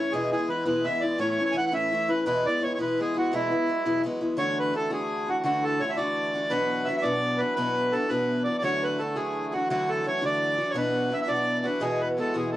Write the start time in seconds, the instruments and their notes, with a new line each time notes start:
Already playing: accordion E3 E4 C#5, steel-string acoustic guitar C#4 E4
0.00 steel-string acoustic guitar A3
0.12 steel-string acoustic guitar E2 B2 E3 G#3 B3 E4, accordion E3 E4 G#4
0.32 steel-string acoustic guitar E3 G#3 B3 E4, accordion G#4
0.48 steel-string acoustic guitar E3 G#3 B3 E4, accordion B4
0.65 steel-string acoustic guitar E2 B2 E3 G#3 B3 E4, accordion B4
0.85 steel-string acoustic guitar E3 G#3 B3 E4, accordion E5
1.01 steel-string acoustic guitar G#3 B3 E4, accordion D5
1.05 steel-string acoustic guitar E3
1.18 steel-string acoustic guitar A2 E3 A3 C#4 E4, accordion C#5
1.31 accordion C#5
1.38 steel-string acoustic guitar A3 C#4 E4
1.45 accordion C#5
1.52 steel-string acoustic guitar E3 A3, accordion G#5
1.56 steel-string acoustic guitar C#4 E4, accordion F#5
1.67 accordion F#5
1.71 steel-string acoustic guitar A2 E3 A3 C#4 E4, accordion E5
1.91 steel-string acoustic guitar E3 A3 C#4 E4
2.09 steel-string acoustic guitar A3 C#4 E4, accordion B4
2.26 steel-string acoustic guitar E2 B2 E3 G#3 B3 E4, accordion B4
2.46 steel-string acoustic guitar E3 G#3 B3 E4, accordion D5
2.61 steel-string acoustic guitar E3 G#3 B3 E4, accordion C#5
2.74 accordion C#5
2.78 steel-string acoustic guitar E2 B2 E3 G#3 B3 E4, accordion B4
2.98 steel-string acoustic guitar E3 G#3 B3 E4, accordion G#4
3.14 steel-string acoustic guitar E3 G#3 B3 E4, accordion F#4
3.32 steel-string acoustic guitar E2 B2 F#3 G#3 B3 E4, accordion E4
3.50 steel-string acoustic guitar F#3 G#3 B3 E4
3.67 steel-string acoustic guitar F#3 G#3 B3 E4
3.85 steel-string acoustic guitar E2 B2 F#3 G#3 B3 E4
4.03 steel-string acoustic guitar F#3 G#3 B3 E4
4.21 steel-string acoustic guitar F#3 G#3 B3 E4
4.36 steel-string acoustic guitar D3 A3 D4 F#4, accordion E3 E4 C#5
4.59 accordion B4
4.73 steel-string acoustic guitar D3 A3 D4 F#4, accordion A4
4.90 steel-string acoustic guitar D3 A3 D4 F#4, accordion G#4
5.26 steel-string acoustic guitar A3 D4 F#4, accordion F#4
5.44 steel-string acoustic guitar D3 A3 D4 F#4, accordion F#4
5.64 accordion A4
5.80 steel-string acoustic guitar D3 A3 D4 F#4, accordion C#5
5.90 accordion E5
5.97 steel-string acoustic guitar D3 A3 D4 F#4, accordion D5
6.34 steel-string acoustic guitar A3 D4 F#4
6.50 steel-string acoustic guitar B2 F#3 B3 D4 F#4, accordion B4
6.85 steel-string acoustic guitar F#3 B3 D4, accordion E5
6.90 steel-string acoustic guitar F#4
6.97 accordion E5
7.03 steel-string acoustic guitar B2 F#3 B3 D4 F#4, accordion D5
7.38 steel-string acoustic guitar D4 F#4, accordion B4
7.42 steel-string acoustic guitar B3
7.56 steel-string acoustic guitar B2 F#3 B3 D4 F#4, accordion B4
7.92 steel-string acoustic guitar F#3 B3 D4 F#4, accordion A4
8.09 steel-string acoustic guitar B2 F#3 B3 D4 F#4, accordion B4
8.44 steel-string acoustic guitar D4 F#4, accordion D5
8.49 steel-string acoustic guitar B3
8.58 steel-string acoustic guitar D3, accordion D5
8.62 accordion E3 E4 C#5, steel-string acoustic guitar F#3 A3 D4 F#4
8.84 accordion B4
8.98 steel-string acoustic guitar F#3 A3 D4 F#4, accordion A4
9.16 steel-string acoustic guitar D3 F#3 A3 D4 F#4, accordion G#4
9.52 steel-string acoustic guitar A3 D4 F#4, accordion F#4
9.70 steel-string acoustic guitar D3 F#3 A3 D4 F#4, accordion F#4
9.89 accordion A4
10.04 steel-string acoustic guitar F#3 A3 D4 F#4, accordion C#5
10.21 steel-string acoustic guitar D3 F#3 A3 D4 F#4
10.25 accordion D5
10.58 steel-string acoustic guitar A3 D4 F#4
10.70 steel-string acoustic guitar B2, accordion C#5
10.75 steel-string acoustic guitar F#3 B3 D4 F#4, accordion B4
11.10 steel-string acoustic guitar F#3 B3 D4 F#4, accordion E5
11.21 accordion E5
11.28 steel-string acoustic guitar B2 F#3 B3 D4 F#4, accordion D5
11.64 steel-string acoustic guitar B3 D4 F#4, accordion B4
11.80 steel-string acoustic guitar E2 B2 E3 G#3 B3 F#4, accordion G#4
12.01 accordion B4
12.17 steel-string acoustic guitar E3 G#3 B3 F#4, accordion A4
12.34 steel-string acoustic guitar E2 B2 E3 G#3 B3 F#4, accordion G#4
12.52 accordion A4